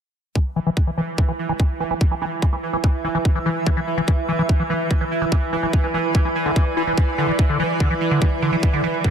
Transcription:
0.35 9.10 E3 medium
0.35 0.39 E3 medium
0.35 9.10 E4 medium
0.35 kick loud
0.56 0.60 E3 medium
0.56 closed hi-hat medium
0.66 0.70 E3 medium
0.66 closed hi-hat medium
0.77 kick loud
0.87 0.91 E3 medium
0.96 1.01 E3 medium
0.96 9.10 B4 medium
0.96 closed hi-hat medium
1.08 closed hi-hat medium
1.18 1.22 E3 medium
1.18 kick loud
1.28 1.32 E3 medium
1.39 closed hi-hat medium
1.49 1.53 E3 medium
1.49 4.82 E5 medium
1.49 closed hi-hat medium
1.60 1.63 E3 medium
1.60 kick loud
1.80 1.84 E3 medium
1.80 closed hi-hat medium
1.91 1.94 E3 medium
1.91 closed hi-hat medium
2.01 kick loud
2.11 2.15 E3 medium
2.22 2.25 E3 medium
2.22 closed hi-hat medium
2.32 closed hi-hat medium
2.42 2.46 E3 medium
2.42 kick loud
2.53 2.56 E3 medium
2.63 closed hi-hat loud
2.73 2.77 E3 medium
2.73 closed hi-hat medium
2.84 2.87 E3 medium
2.84 kick loud
3.04 3.08 E3 medium
3.04 closed hi-hat medium
3.15 3.18 E3 medium
3.15 closed hi-hat medium
3.25 kick loud
3.35 3.39 E3 medium
3.46 3.49 E3 medium
3.46 closed hi-hat medium
3.56 closed hi-hat medium
3.67 3.70 E3 medium
3.67 kick loud
3.77 3.80 E3 medium
3.87 closed hi-hat medium
3.98 4.01 E3 medium
3.98 closed hi-hat soft
4.08 4.11 E3 medium
4.08 kick loud
4.29 4.32 E3 medium
4.29 closed hi-hat medium
4.39 4.42 E3 medium
4.39 closed hi-hat soft
4.49 kick loud
4.60 4.63 E3 medium
4.70 4.73 E3 medium
4.70 closed hi-hat medium
4.80 8.13 D5 medium
4.80 closed hi-hat medium
4.91 4.94 E3 medium
4.91 kick loud
5.01 5.04 E3 medium
5.11 closed hi-hat medium
5.22 5.25 E3 medium
5.22 closed hi-hat soft
5.32 5.35 E3 medium
5.32 kick loud
5.53 5.56 E3 medium
5.53 closed hi-hat medium
5.63 5.67 E3 medium
5.63 closed hi-hat soft
5.73 kick loud
5.84 5.87 E3 medium
5.94 5.98 E3 medium
5.94 closed hi-hat medium
6.04 closed hi-hat soft
6.15 6.18 E3 medium
6.15 kick loud
6.25 6.29 E3 medium
6.35 closed hi-hat medium
6.46 6.52 D3 medium
6.46 closed hi-hat soft
6.56 6.65 E3 medium
6.56 kick loud
6.77 6.83 E4 medium
6.77 closed hi-hat medium
6.87 6.93 E3 medium
6.87 closed hi-hat soft
6.97 7.01 E3 medium
6.97 kick loud
7.18 7.27 D3 medium
7.18 closed hi-hat medium
7.29 7.32 E3 medium
7.29 closed hi-hat soft
7.39 kick loud
7.49 7.58 D3 medium
7.49 closed hi-hat soft
7.60 7.63 E3 medium
7.60 closed hi-hat medium
7.70 closed hi-hat soft
7.80 7.89 D3 medium
7.80 kick loud
7.91 7.94 E3 medium
8.01 closed hi-hat medium
8.11 8.20 D3 medium
8.11 9.10 E5 medium
8.11 closed hi-hat soft
8.22 kick loud
8.42 8.51 D3 medium
8.42 closed hi-hat medium
8.53 8.56 E3 medium
8.53 closed hi-hat soft
8.63 kick loud
8.73 8.82 D3 medium
8.73 closed hi-hat soft
8.84 8.87 E3 medium
8.84 closed hi-hat medium
8.94 closed hi-hat soft
9.04 9.10 D3 medium
9.04 kick loud

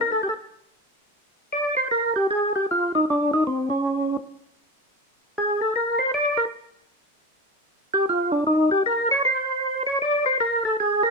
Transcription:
0.01 0.11 A#4 medium
0.12 0.22 A4 medium
0.23 0.28 G4 medium
0.29 0.34 A4 medium
1.53 1.75 D5 medium
1.77 1.88 C5 medium
1.91 2.14 A#4 medium
2.16 2.27 G4 medium
2.31 2.53 G#4 medium
2.56 2.66 G4 medium
2.71 2.92 F4 medium
2.95 3.05 D#4 medium
3.10 3.31 D4 medium
3.34 3.44 D#4 loud
3.47 3.69 C4 medium
3.70 4.17 C#4 medium
5.38 5.61 G#4 medium
5.62 5.74 A4 medium
5.76 5.99 A#4 medium
5.99 6.12 C5 medium
6.14 6.38 D5 medium
6.37 6.45 A#4 loud
7.94 8.06 G4 medium
8.09 8.32 F4 medium
8.32 8.44 D4 medium
8.47 8.70 D#4 medium
8.71 8.83 G4 medium
8.86 9.09 A#4 medium
9.11 9.23 C#5 loud
9.25 9.83 C5 medium
9.87 9.99 C#5 medium
10.02 10.25 D5 medium
10.26 10.38 C5 loud
10.40 10.63 A#4 medium
10.65 10.77 A4 loud
10.80 11.03 G#4 medium
11.03 11.10 A#4 loud

